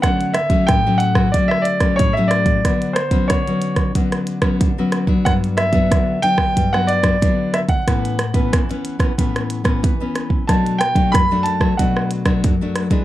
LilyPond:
<<
  \new Staff \with { instrumentName = "Grand piano" } { \time 4/4 \key d \major \tempo 4 = 92 fis''8 e''8 g''8 fis''8 d''16 e''16 d''8 cis''16 e''16 d''8~ | d''8 c''8 cis''4 r2 | fis''8 e''4 g''8. fis''16 d''4 e''16 fis''16~ | fis''2~ fis''8. r4 r16 |
a''8 g''8 b''8 a''8 fis''8 r4. | }
  \new Staff \with { instrumentName = "Nylon-string guitar" } { \time 4/4 \key d \major << { <fis a cis'>8 r16 <fis a cis'>8 <fis a cis'>8 <fis a cis'>16 <fis a cis'>8. <fis a cis'>8 <fis a cis'>8. | <fis b>8 r16 <fis b cis'>8 <fis b cis'>8. <fis b cis'>8. <fis b cis'>8 <fis b cis'>8 <fis b d'>16~ | <fis b d'>8. <fis b d'>8. <fis b d'>8. <fis b d'>8 <fis b d'>16 <fis b d'>8. r16 | <e b cis'>8 r16 <e b cis'>8 <e b cis'>8 <e b cis'>16 <e b cis'>8. <e b cis'>8 <e b cis'>8. |
<fis a d'>8 r16 <fis a d'>8 <fis a d'>8 <fis a d'>16 <fis a d'>8. <fis a d'>8 <fis a d'>8 <e gis d'>16 | } \\ { d4 a,4 d4 a,4 | d4 d4 d4 d4 | g,4 d4 g,4 d4 | a,4 e4 a,4 e4 |
b,4 fis,4 b,4 fis,4 | } >> }
  \new DrumStaff \with { instrumentName = "Drums" } \drummode { \time 4/4 <hh bd ss>16 hh16 <hh ss>16 <hh bd>16 <hh bd ss>8 hh16 <bd ss>16 <hh bd>16 ss16 hh16 <hh bd ss>16 <hh bd>8 <hh ss>16 <hh bd>16 | <hh bd ss>16 hh16 <hh ss>16 <hh bd>16 <hh bd ss>16 hh16 hh16 <hh bd ss>16 <hh bd>16 <hh ss>16 hh16 <hh bd ss>16 <hh bd>8 <hh ss>16 bd16 | <hh bd ss>16 hh16 <hh ss>16 <hh bd>16 <hh bd ss>8 hh16 <bd ss>16 <hh bd>16 ss16 hh16 <hh bd ss>16 <hh bd>8 <hh ss>16 <hh bd>16 | <hh bd ss>16 hh16 <hh ss>16 <hh bd>16 <hh bd ss>16 hh16 hh16 <hh bd ss>16 <hh bd>16 <hh ss>16 hh16 <hh bd ss>16 <hh bd>8 <hh ss>16 bd16 |
<hh bd ss>16 hh16 <hh ss>16 <hh bd>16 <hh bd ss>8 hh16 <bd ss>16 <hh bd>16 ss16 hh16 <hh bd ss>16 <hh bd>8 <hh ss>16 <hh bd>16 | }
>>